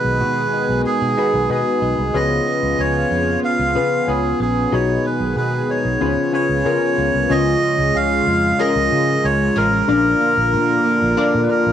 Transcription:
Already playing: synth keys B2 D#4 F#4 G#4 B4, analog synth pad D#3 B3 G#4, clean electric guitar D#3 G#3, melodica B4
0.05 fretless electric bass B1
0.21 fretless electric bass B2, clean electric guitar F#4
0.53 clean electric guitar D#4
0.69 fretless electric bass B1
0.85 clean electric guitar G#3, melodica G#4, muted fretless electric bass stroke
1.01 fretless electric bass B2
1.17 synth keys D#4 F#4 G#4 B4, clean electric guitar F#4
1.34 fretless electric bass B1
1.50 fretless electric bass B2, synth keys D#4 F#4 G#4 B4, clean electric guitar D#4, melodica G#4
1.82 fretless electric bass B1, clean electric guitar G#3
1.98 fretless electric bass C2
2.14 fretless electric bass C#2, analog synth pad C#3 F4, synth keys C#3 C#4 F4 G#4 B4, clean electric guitar F3, melodica D#5
2.47 clean electric guitar B3
2.63 fretless electric bass C#2
2.79 fretless electric bass C#2, clean electric guitar G#4, melodica C#5
3.11 fretless electric bass F2, clean electric guitar C#4
3.43 clean electric guitar B3, melodica F5
3.59 fretless electric bass C#2
3.75 fretless electric bass C#3, synth keys C#4 F4 G#4 B4, clean electric guitar G#4
4.07 fretless electric bass C#2, synth keys C#4 F4 G#4 B4, clean electric guitar C#4, melodica G#4
4.40 fretless electric bass A#1, clean electric guitar B3, melodica G#4
4.72 fretless electric bass B1, synth keys B2 D#4 F#4 G#4 B4, analog synth pad D#3 G#4, clean electric guitar F#3, melodica C#5
5.04 clean electric guitar B3, melodica B4
5.20 fretless electric bass B1
5.36 fretless electric bass B2, clean electric guitar G#4, melodica B4
5.69 clean electric guitar D#4, melodica C#5
5.85 fretless electric bass B1
6.01 fretless electric bass C#2, analog synth pad C#3 F4, synth keys C#3 C#4 F4 G#4 B4, clean electric guitar F3
6.17 fretless electric bass C#3
6.33 synth keys C#4 F4 G#4 B4, clean electric guitar G#4, melodica C#5
6.49 fretless electric bass C#2
6.65 fretless electric bass C#3, synth keys C#4 F4 G#4 A#4, clean electric guitar C#4
6.98 fretless electric bass C#2, clean electric guitar B3
7.14 fretless electric bass C2
7.30 fretless electric bass C#2, synth keys C#3 C#4 F4 G#4 C#5, analog synth pad C#3 G#3 F4, clean electric guitar F3 G#4, melodica D#5
7.63 clean electric guitar G#3
7.78 fretless electric bass C#2
7.95 fretless electric bass C#2, clean electric guitar G#4, melodica F5
8.27 fretless electric bass F2, clean electric guitar G#3
8.59 analog polysynth F3 C#4 G#4, synth keys C#4 F4 G#4 A#4, clean electric guitar C#4, melodica D#5
8.76 fretless electric bass C#2
8.92 fretless electric bass C#3, clean electric guitar G#4
9.24 fretless electric bass C#2, clean electric guitar C#4, melodica C#5
9.56 fretless electric bass A1, analog polysynth F3 C#4 G#4, clean electric guitar G#3, melodica A#4
9.88 fretless electric bass A#1, synth keys A#2 D4 F4 A#4 D5, analog synth pad D3 A#3, clean electric guitar F3 F4
10.21 clean electric guitar A#3
10.37 fretless electric bass A#1
10.53 fretless electric bass A#2, clean electric guitar F4
10.85 clean electric guitar A#3
11.02 fretless electric bass A#1
11.17 analog polysynth F3 D4 A#4, clean electric guitar D4, synth keys D4 F4 A#4 D5
11.34 fretless electric bass A#2
11.43 melodica B4
11.50 clean electric guitar F4, melodica A#4
11.66 fretless electric bass A#1

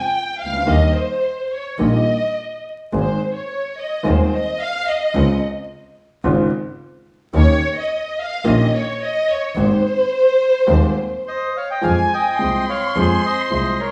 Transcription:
0.00 violin section G5
0.40 double bass C#2, violin section F5
0.46 upright piano C2
0.53 upright piano C#2
0.60 upright piano D2
0.66 double bass D#2, upright piano D#2 D#3 G3 A#3 G4, violin section D#5
0.95 violin section C5
1.52 violin section C#5
1.79 double bass A#1, upright piano A#1 A#2 D#3 G3 A#3 G4, violin section D#5
2.92 upright piano G#1 G#2 D#3 G#3 C4 G#4, double bass G#1, violin section C5
3.36 violin section C#5
3.78 violin section D#5
4.03 upright piano D#1 D#2 D#3 G#3 C4 G#4, double bass D#2, violin section C5
4.34 violin section D#5
4.60 violin section F5
4.88 violin section D#5
5.14 double bass C#2, upright piano C#2 C#3 G#3 C4 F4
6.24 upright piano G#1 G#2 C#3 G#3 C4 F4, double bass G#1
7.33 upright piano D#2 D#3 A#3 C#4 G4, double bass D#2, violin section C#5
7.77 violin section D#5
8.19 violin section F5
8.44 upright piano A#1 A#2 D#3 A#3 C#4 G4, double bass A#1, violin section D#5
8.75 violin section C#5
9.03 violin section D#5
9.30 violin section C#5
9.56 double bass G#1, upright piano G#1 G#2 D#3 G#3 C4 G4, violin section C5
10.67 upright piano D#1 D#2 D#3 G#3 C4 G4, double bass D#2
11.27 bandoneon C5 D#5
11.57 bandoneon C#5 F5
11.70 bandoneon D#5 G5
11.81 upright piano F2 F3 G#3 C4 G#4, double bass F2, bandoneon F5 G#5, violin section G#5
12.14 bandoneon D#5 G5
12.39 upright piano C2 C3 F3 G#3 C4 G#4, double bass C2, violin section C6
12.69 bandoneon C#5 F5
12.95 upright piano F2 F3 G#3 C4 G#4, double bass F2
13.00 bandoneon G#4 C5
13.26 bandoneon C5 D#5
13.50 upright piano C2 C3 F3 G#3 C4 G#4, double bass C2, bandoneon D#5
13.54 bandoneon C5
13.80 bandoneon A#4 C#5

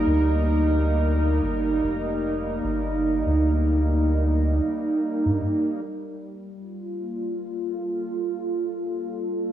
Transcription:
Already playing: analog synth pad G3 A#3 D#4 A#4
0.06 sub bass D2
1.43 sub bass G1
1.83 sub bass F1
2.63 sub bass G1
3.26 sub bass D2
5.26 sub bass G2
5.83 analog synth pad G3
6.59 analog synth pad F4
6.83 analog synth pad A#3
7.51 analog synth pad A4

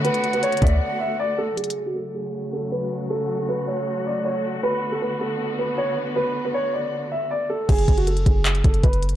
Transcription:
Already playing: 808-style bass D3, string section D3 A3 B3 F#4
0.05 grand piano B4, flute F#5, closed hi-hat
0.14 closed hi-hat
0.24 closed hi-hat
0.33 grand piano B4, closed hi-hat
0.43 grand piano C#5, closed hi-hat
0.52 closed hi-hat
0.57 closed hi-hat
0.62 808-style bass D2, grand piano D5, flute E5, kick, closed hi-hat
0.67 closed hi-hat
0.81 flute F#5
1.00 grand piano E5
1.19 grand piano D5
1.38 grand piano A4
1.57 string section C#3 F#3 A3 F#4, grand piano G#4, closed hi-hat
1.64 closed hi-hat
1.70 closed hi-hat
1.86 grand piano F#4
1.96 grand piano A4
2.15 grand piano G#4
2.53 grand piano A4
2.72 grand piano B4
3.10 grand piano A4
3.39 grand piano A4
3.49 grand piano B4
3.68 grand piano C#5
4.06 grand piano D5
4.25 grand piano C#5
4.63 string section D3 B3, grand piano B4
4.92 grand piano A4
5.02 grand piano B4
5.21 grand piano A4
5.59 grand piano B4
5.78 grand piano C#5
6.16 grand piano B4
6.45 grand piano B4
6.54 grand piano C#5
6.73 grand piano D5
7.12 grand piano E5
7.31 grand piano D5
7.50 grand piano A4
7.69 808-style bass F#1, grand piano G#4, kick, closed hi-hat, crash
7.78 closed hi-hat
7.88 808-style bass F#1, kick, closed hi-hat
7.97 grand piano F#4, closed hi-hat
8.07 grand piano A4, closed hi-hat
8.17 closed hi-hat
8.26 808-style bass F#1, grand piano G#4, kick, closed hi-hat
8.45 clap, closed hi-hat
8.55 closed hi-hat
8.64 808-style bass F#1, grand piano A4, kick, closed hi-hat
8.74 closed hi-hat
8.83 808-style bass F#1, grand piano B4, kick, closed hi-hat
8.93 closed hi-hat
9.03 closed hi-hat
9.09 closed hi-hat

